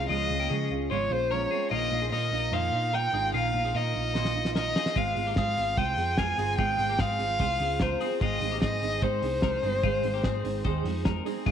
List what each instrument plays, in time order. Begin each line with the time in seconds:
Already playing: clean electric guitar C4
0.09 picked electric bass C#2, steel-string acoustic guitar C#3 F3 G#3 C#4 F4, violin D#5
0.29 picked electric bass C#2, steel-string acoustic guitar G#3 C#4 F4
0.40 clean electric guitar A#3 G4
0.50 picked electric bass C#3, steel-string acoustic guitar F3 G#3 C#4 F4, clean electric guitar G#4
0.70 picked electric bass C#2, steel-string acoustic guitar G#3 C#4 F4
0.90 picked electric bass G#1, steel-string acoustic guitar C#3 F3 G#3 C#4 F4, clean electric guitar C5, violin C#5
1.10 picked electric bass A#1, steel-string acoustic guitar G#3 C#4 F4, violin C5
1.31 steel-string acoustic guitar F3 G#3 C#4 F4, clean electric guitar A#4, violin C#5
1.51 steel-string acoustic guitar G#3 C#4 F4, clean electric guitar C4 G#4
1.71 picked electric bass A#1, steel-string acoustic guitar A#2 D#3 A#3 D#4 F4, violin D#5
1.92 picked electric bass A#1, steel-string acoustic guitar A#3 D#4 F4
2.02 clean electric guitar C4 G#4
2.12 picked electric bass A#2, steel-string acoustic guitar D#3 A#3 D#4 F4, clean electric guitar A#4, violin D#5
2.31 picked electric bass A#1, steel-string acoustic guitar A#3 D#4 F4
2.52 picked electric bass F2, steel-string acoustic guitar A#2 D#3 A#3 D#4 F4, clean electric guitar C5, violin F5
2.72 picked electric bass A#2, steel-string acoustic guitar A#3 D#4 F4
2.93 steel-string acoustic guitar D#3 A#3 D#4 F4, clean electric guitar A#4, violin G5
3.13 picked electric bass G#1, steel-string acoustic guitar A#3 D#4 F4, clean electric guitar C4 G#4
3.33 picked electric bass A#1, steel-string acoustic guitar A#2 D#3 A#3 D#4 F4, violin F5
3.54 picked electric bass A#1, steel-string acoustic guitar A#3 D#4 F4
3.65 clean electric guitar C4 G#4
3.74 picked electric bass A#2, steel-string acoustic guitar D#3 A#3 D#4 F4, clean electric guitar A#4, violin D#5
3.95 picked electric bass A#1, steel-string acoustic guitar A#3 D#4 F4
4.15 steel-string acoustic guitar A#2 D#3 A#3 D#4 F4, clean electric guitar C5, snare
4.25 snare
4.35 steel-string acoustic guitar A#3 D#4 F4
4.45 snare
4.56 steel-string acoustic guitar D#3 A#3 D#4 F4, clean electric guitar A#4, violin D#5, snare
4.76 steel-string acoustic guitar A#3 D#4 F4, clean electric guitar C4 G#4, snare
4.86 snare
4.96 picked electric bass G#1, steel-string acoustic guitar G#3 C4 F4 G#4, violin F5, kick, closed hi-hat
5.16 picked electric bass G#1, steel-string acoustic guitar C4 F4 G#4, open hi-hat
5.27 clean electric guitar A#3 G4
5.36 picked electric bass G#2, steel-string acoustic guitar G#3 C4 F4 G#4, violin F5, kick, snare, closed hi-hat
5.57 picked electric bass G#1, steel-string acoustic guitar C4 F4 G#4, open hi-hat
5.77 picked electric bass C2, steel-string acoustic guitar G#3 C4 F4 G#4, clean electric guitar C5, violin G5, kick, closed hi-hat
5.97 picked electric bass F2, steel-string acoustic guitar C4 F4 G#4, open hi-hat
6.17 steel-string acoustic guitar G#3 C4 G#4, clean electric guitar F4 A#4, violin G#5, kick, snare, closed hi-hat
6.38 picked electric bass G1, steel-string acoustic guitar C4 F4 G#4, open hi-hat
6.58 picked electric bass G#1, steel-string acoustic guitar G#3 C4 F4 G#4, violin G5, kick, closed hi-hat
6.78 picked electric bass G#1, steel-string acoustic guitar C4 F4 G#4, open hi-hat
6.90 clean electric guitar A#3 G4
6.98 picked electric bass G#2, steel-string acoustic guitar G#3 C4 F4, clean electric guitar G#4, violin F5, kick, snare, closed hi-hat
7.19 picked electric bass G#1, steel-string acoustic guitar C4 F4 G#4, open hi-hat
7.39 picked electric bass C2, steel-string acoustic guitar G#3 C4 F4 G#4, clean electric guitar C5, kick, closed hi-hat
7.60 picked electric bass C#2, steel-string acoustic guitar C4 F4 G#4, open hi-hat
7.80 steel-string acoustic guitar G#3 C4 F4 G#4, clean electric guitar A#4, violin C5, kick, snare, closed hi-hat
8.01 steel-string acoustic guitar C4 F4 G#4, open hi-hat
8.21 picked electric bass G#1, steel-string acoustic guitar G#2 D#3 G#3 C4 D#4 G#4, clean electric guitar F4, violin D#5, kick, closed hi-hat
8.41 picked electric bass G#1, steel-string acoustic guitar G#3 C4 D#4 G#4, open hi-hat
8.52 clean electric guitar A#3 G4
8.62 picked electric bass G#2, steel-string acoustic guitar G#3 C4 D#4 G#4, violin D#5, kick, snare, closed hi-hat
8.82 picked electric bass G#1, steel-string acoustic guitar G#3 C4 D#4 G#4, open hi-hat
9.02 steel-string acoustic guitar G#2 D#3 G#3 C4 D#4 G#4, picked electric bass G#2, clean electric guitar C5, violin C5, kick, closed hi-hat
9.22 picked electric bass C2, steel-string acoustic guitar G#3 C4 D#4 G#4, open hi-hat
9.42 steel-string acoustic guitar G#3 C4 D#4 G#4, clean electric guitar A#4, kick, snare, closed hi-hat
9.63 picked electric bass G1, steel-string acoustic guitar G#3 C4 D#4 G#4, open hi-hat
9.83 picked electric bass G#1, steel-string acoustic guitar G#2 D#3 G#3 C4 D#4 G#4, clean electric guitar F4, kick, closed hi-hat
10.03 picked electric bass G#1, steel-string acoustic guitar G#3 C4 D#4 G#4, open hi-hat
10.14 clean electric guitar A#3 G4
10.24 picked electric bass G#2, steel-string acoustic guitar G#3 C4 D#4 G#4, kick, snare, closed hi-hat
10.44 picked electric bass G#1, steel-string acoustic guitar G#3 C4 D#4 G#4, open hi-hat
10.64 picked electric bass D#2, steel-string acoustic guitar G#2 D#3 G#3 C4 D#4 G#4, clean electric guitar C5, kick, closed hi-hat
10.84 picked electric bass F2, steel-string acoustic guitar G#3 C4 D#4 G#4, open hi-hat
11.05 steel-string acoustic guitar G#3 C4 D#4 G#4, clean electric guitar A#4, kick, snare, closed hi-hat
11.25 steel-string acoustic guitar G#3 C4 D#4 G#4, open hi-hat
11.46 picked electric bass G#1, steel-string acoustic guitar G#2 D#3 G#3 C4 D#4 G#4, clean electric guitar F4, kick, crash